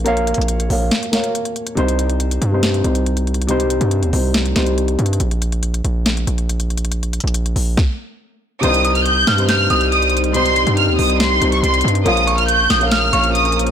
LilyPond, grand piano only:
\new Staff \with { instrumentName = "Grand piano" } { \time 4/4 \key c \phrygian \tempo 4 = 140 <bes bes' des'' f''>4. <bes bes' des'' f''>4 <bes bes' des'' f''>4. | <c g ees' c''>4. r16 <c g ees' c''>8. <c g ees' c''>4. | <c g ees' c''>4. <c g ees' c''>4 <c g ees' c''>4. | r1 |
r1 | <c g ees' c''>4. r16 <c g ees' c''>8. <c g ees' c''>4. | <c g ees' c''>4. <c g ees' c''>4 <c g ees' c''>4. | <bes bes' des'' f''>4. r16 <bes bes' des'' f''>8. <bes bes' des'' f''>4. | }